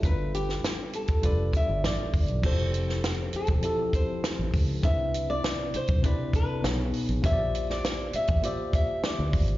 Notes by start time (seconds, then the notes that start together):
Already playing: E5
0.02 G1 G3 D4 F4 A4 A#4 B4, kick, closed hi-hat
0.12 B4
0.34 G4, closed hi-hat
0.49 snare
0.64 snare, closed hi-hat
0.93 A4, closed hi-hat
1.08 kick, closed hi-hat
1.22 F1 G3 D4 F4 A4 B4 D5, kick, closed hi-hat
1.53 D5 E5, kick, closed hi-hat
1.69 G1
1.83 A1 D5, snare, closed hi-hat
2.13 G1, kick, open hi-hat
2.28 B1, closed hi-hat
2.42 F1 F3 C4 E4 G4 A4 C5, kick, crash
2.74 closed hi-hat
2.89 snare
3.03 C5, snare, closed hi-hat
3.33 A4, muted fingered electric bass stroke, closed hi-hat
3.47 E1, kick, closed hi-hat
3.62 F3 C4 E4 G4 A4, closed hi-hat
3.83 G4
3.93 C5, kick, closed hi-hat
4.24 snare, closed hi-hat
4.39 A1
4.54 C#2, kick, open hi-hat
4.81 C2 C3 C4 D4 E4 B4 E5, kick, closed hi-hat
5.14 closed hi-hat
5.30 D5
5.44 snare, closed hi-hat
5.74 C5, muted fingered electric bass stroke, closed hi-hat
5.87 B1, kick, closed hi-hat
6.02 C3 C4 D4 E4 B4 D5, kick, closed hi-hat
6.33 B4, kick, closed hi-hat
6.62 B1 B2 B3 D#4 G#4 C#5, snare, closed hi-hat
6.93 open hi-hat
7.09 A#1, closed hi-hat
7.22 A#1 A#3 F4 G4 C5 C#5 E5, kick, closed hi-hat
7.33 D5
7.55 closed hi-hat
7.70 D5, snare
7.84 snare, closed hi-hat
8.13 E5, muted fingered electric bass stroke, closed hi-hat
8.27 A1, kick, closed hi-hat
8.42 A#3 F4 G4 C5 D5 E5, closed hi-hat
8.73 E5, kick, closed hi-hat
9.04 D5, snare, closed hi-hat
9.19 D2
9.33 G#1, kick, open hi-hat
9.48 closed hi-hat